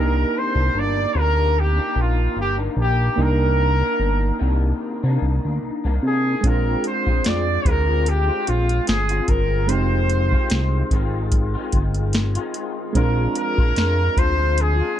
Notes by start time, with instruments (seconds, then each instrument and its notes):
Already playing: analog synth bass C2, clean electric guitar C3 D#3 A#3 D4, synth keys A#3 D4 D#4 G4, trumpet A#4
0.38 trumpet C5
0.54 analog synth bass C2, clean electric guitar D#3 A#3 D4
0.74 analog synth bass G1
0.79 trumpet D5
1.13 analog synth bass D2, clean electric guitar C3 A#3 D4
1.19 trumpet A#4
1.59 trumpet G4
1.77 clean electric guitar D#3 A#3 D4
1.96 analog synth bass A#1
2.01 trumpet F4
2.36 analog synth bass G1
2.41 trumpet G4
2.57 clean electric guitar D#3 A#3 D4
2.77 analog synth bass A#1
2.81 trumpet G4
3.16 analog synth bass C2, clean electric guitar C3 D#3 A#3, synth keys A#3 D4 D#4
3.21 clean electric guitar D4, trumpet A#4, synth keys G5
3.81 clean electric guitar D#3 A#3 D4
4.00 analog synth bass G1
4.38 analog synth bass C2, clean electric guitar C3 D#3 A#3 D4
5.03 analog synth bass C3, clean electric guitar D#3 A#3 D4
5.22 analog synth bass C2
5.45 analog synth bass D2
5.63 analog synth bass C2
5.84 analog synth bass C2, clean electric guitar D#3 A#3 D4
6.03 analog synth bass C3
6.07 trumpet G#4
6.41 analog synth bass A#1, clean electric guitar D3 G#3 C4, synth keys G#3 C4 D4, kick, closed hi-hat
6.46 clean electric guitar F4, synth keys F4, trumpet A#4
6.84 trumpet C5, closed hi-hat
7.06 analog synth bass A#1, clean electric guitar G#3 C4 F4, kick
7.24 analog synth bass F2, trumpet D5, snare, closed hi-hat
7.65 analog synth bass D2, clean electric guitar D3 G#3 C4 F4, trumpet A#4, kick, closed hi-hat
8.06 trumpet G4, closed hi-hat
8.28 clean electric guitar G#3 C4 F4
8.47 analog synth bass A#1, trumpet F4, closed hi-hat
8.69 closed hi-hat
8.87 analog synth bass G1, trumpet G#4, snare, closed hi-hat
9.09 clean electric guitar G#3 C4 F4, closed hi-hat
9.28 analog synth bass G1, trumpet A#4, kick, closed hi-hat
9.67 analog synth bass F1, clean electric guitar D#3 G#3, synth keys G#3 C4 D#4, trumpet C5, closed hi-hat
9.71 clean electric guitar C4 F4, synth keys G4
10.10 closed hi-hat
10.32 clean electric guitar D#3 G#3 C4 F4, kick
10.50 analog synth bass C2, snare, closed hi-hat
10.91 analog synth bass G#1, clean electric guitar D#3 G#3 C4 F4, kick, closed hi-hat
11.32 kick, closed hi-hat
11.54 clean electric guitar D#3 G#3 C4 F4
11.72 analog synth bass G1, kick, closed hi-hat
11.95 closed hi-hat
12.13 snare, closed hi-hat
12.35 clean electric guitar D#3 G#3 C4 F4, closed hi-hat
12.54 closed hi-hat
12.93 analog synth bass A#1, clean electric guitar F3 G#3, synth keys G#3 C4 D4, trumpet A#4, kick, closed hi-hat
12.97 clean electric guitar D4 F4, synth keys F4
13.35 trumpet A#4, closed hi-hat
13.58 analog synth bass A#1, clean electric guitar G#3 D4 F4, kick
13.76 analog synth bass F2, snare, closed hi-hat
14.17 analog synth bass D2, clean electric guitar F3 G#3 D4 F4, trumpet C5, kick, closed hi-hat
14.58 trumpet G#4, closed hi-hat
14.80 clean electric guitar G#3 D4 F4